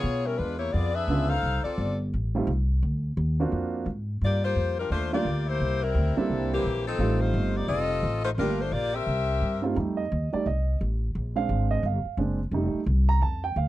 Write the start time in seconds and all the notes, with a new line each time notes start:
Already playing: B3 F4 G#4 C#5
0.03 B2
0.26 G3 C#4 E4 A#4
0.38 E2 G#3 D4 F4 B4
0.59 A#3 E4 G4 C#5
0.72 F2 B3 F4 G#4 D5
0.94 D4 G#4 B4 E5
1.08 C#2 D3 G#3 B3 C#4 F4
1.29 D#4 A4 C5 F5
1.43 C2
1.64 C4 F4 A4 D5
1.78 G1
2.14 A1
2.35 G3 A3 C4 D#4 F4
2.47 C2
2.83 D2
3.17 D#2
3.40 A#3 C4 D4 F4 F#4
3.52 F2
3.86 G#2
4.21 G2 A#3 F4 G4 D5
4.45 A#3 F4 G4 C5
4.56 F2
4.80 G3 D4 F4 A#4
4.90 D#2 A3 D4 F4 C5
5.13 G3 A3 A#3 D4 F4 G4 D5
5.25 D2
5.48 A#3 E4 G4 C5
5.60 C2
5.83 G3 C4 E4 A#4
5.95 D2
6.17 G3 A#3 C4 D4 E4 A4
6.30 C2
6.54 E3 A#3 C4 G4
6.64 A#1
6.87 F3 C4 D#4 A4
6.99 A1 G3 A3 C4 D#4 F4
7.21 A3 D#4 F4 C5
7.34 G1
7.57 A#3 D#4 G4 D5
7.68 F1 C4 F4 A4 D#5
8.03 A1
8.24 A3 D#4 F4 C5
8.38 G1 G3 A3 A#3 D4 F4 A#4
8.61 A3 D4 F4 C5
8.72 A#1 A#3 F4 G4 D5
8.94 C4 G4 A#4 E5
9.06 C2
9.41 G2
9.62 G3 A3 C4 D#4 F4
9.75 F2 G3 A3 D#4
9.97 D#5
10.12 D#2
10.33 G3 A3 D#4 D5, muted upright bass stroke
10.46 C2 D#5
10.81 A1
11.15 A#1
11.36 G#3 C4 D4 F5
11.49 G#1
11.71 D#5
11.83 G1 F5
12.05 muted upright bass stroke
12.17 F#1 G#3 C4 D4
12.51 F1 G3 A3 D#4
12.74 muted upright bass stroke
12.86 C2
13.09 A#5
13.21 F2 A5
13.44 G5
13.56 D2 F5